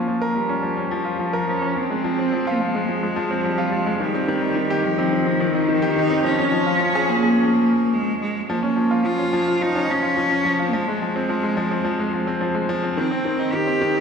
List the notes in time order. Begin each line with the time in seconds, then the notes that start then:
Already playing: F3 A#3 C#4 F4
0.08 F3
0.22 A#4
0.35 F3 G3
0.49 C#4
0.63 F3
0.77 C#4
0.91 F3
1.05 F4
1.19 F3
1.33 A#4
1.47 F3 C#4
1.62 C#4
1.76 F3 C4
1.90 G#3
2.04 F3
2.19 C4
2.32 F3
2.47 F4
2.61 F3 G#3
2.75 G#3
2.89 F3
3.03 G#3
3.16 F3
3.31 C4
3.44 F3 G3
3.58 F4
3.72 F3 G#3
3.86 G#3
4.00 D#3 G3
4.14 C4
4.28 D#3
4.42 D#4
4.56 D#3
4.70 G4
4.84 D#3 F3
4.98 C4
5.13 D#3
5.27 C4
5.40 D#3
5.55 D#4
5.69 D#3
5.82 G4
5.96 D#3 D#4
6.10 C4
6.24 F3 C#4
6.38 C#4
6.52 F3
6.66 F4
6.81 F3
6.95 G#4
7.09 F3 A#3
7.22 C#4
7.93 G#3
8.21 G#3
8.49 F3 A#3
8.63 C#4
8.77 F3
8.91 F4
9.05 F3 F4
9.18 C#4
9.33 F3
9.48 F4
9.61 F3 D#4
9.75 C#4
9.89 F3 C#4
10.03 F4
10.17 F3
10.31 C#4
10.45 F3
10.59 F4
10.73 F3 G#3
10.88 G#3
11.02 F3
11.16 C4
11.29 F3
11.43 G#3
11.57 F3
11.71 C4
11.85 F3
11.99 G#3
12.14 F3
12.27 C4
12.41 F3
12.55 G#3
12.69 F3
12.83 C4
12.97 D#3 C4
13.11 C4
13.25 D#3
13.39 D#4
13.53 D#3 G4
13.67 C4
13.81 D#3
13.95 D#4